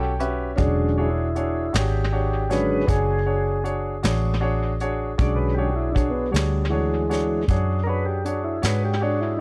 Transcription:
Already playing: B1 C#4 F#4 G4 A4
0.00 G5
0.20 C#4 F#4 G4 B4 E5, closed hi-hat
0.56 E1 D3 F#3 G#3 C#4 D4 F#4 G#4 C#5, kick, closed hi-hat
0.97 D4 E4 F#4 G#4 C#5
1.35 D4 F#4 G#4 C#5, closed hi-hat
1.73 G#1 D4 F#4 G#4 C#5, snare, closed hi-hat
1.78 G4
2.12 D4 F#4 G#4 C#5
2.49 D3 F#3 G#3 C#4 D4 F#4 G#4 B4 C#5, snare, closed hi-hat
2.87 F#1 D4 F#4 G#4 C#5, kick, closed hi-hat
3.26 D4 F#4 G#4 C#5
3.63 D4 F#4 G#4 C#5, closed hi-hat
4.03 A1 D4 F#4 G#4 C#5, snare, closed hi-hat
4.40 D4 F#4 G#4 C#5
4.80 D4 F#4 G#4 C#5, closed hi-hat
5.18 B1 D3 F#3 G#3 C#4 D4 F#4 G#4 C#5 D5, kick, closed hi-hat
5.36 B4
5.54 D4 F#4 G4 G#4
5.59 C#5
5.76 E4
5.92 D4 F#4 G#4 C#5, kick
5.97 closed hi-hat
6.10 B3
6.31 D2 G3 D4 F#4 G#4 C#5, closed hi-hat
6.36 snare
6.70 E3 G#3 D4 F#4 G#4 C#5
7.09 D4 F#4 G#4 C#5, snare, closed hi-hat
7.48 F#2 D4 F#4 G#4 C#5, kick, closed hi-hat
7.84 D4 F#4 G#4 A#4 C#5
7.89 B4
8.06 G4
8.25 D4 F#4 G#4 C#5, closed hi-hat
8.44 E4
8.62 G#2 D4 F#4 G#4 B4 C#5, snare, closed hi-hat
8.85 G4
9.01 D4 F#4 G#4 C#5
9.21 E4
9.37 D#4

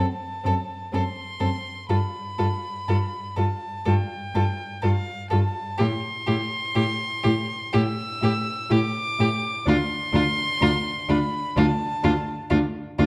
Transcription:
Already playing: A5
0.44 F#2 C4 A4
0.92 F#2 C4 A4 C6
1.40 F#2 C4 A4
1.89 G2 F4 A4 B5
2.38 G2 F4 A4
2.88 G2 F4 A4
3.36 G2 F4 A4 A5
3.85 G2 F4 A4 G5
4.35 G2 F4 A4
4.82 G2 F4 A4 F5
5.30 G2 F4 A4 A5
5.78 A2 E4 G4 C6
6.27 A2 E4 G4
6.75 A2 E4 G4
7.23 A2 E4 G4
7.73 A2 E4 G4 E6
8.21 A2 E4 G4
8.70 A2 E4 G4 D6
9.19 A2 E4 G4
9.66 D2 D4 F4 C6
10.13 D2 D4 F4
10.61 D2 D4 F4
11.09 D2 D4 F4 B5
11.56 D2 D4 F4 A5
12.03 D2 D4 F4
12.50 D2 D4 F4
12.99 D2 D4 F4

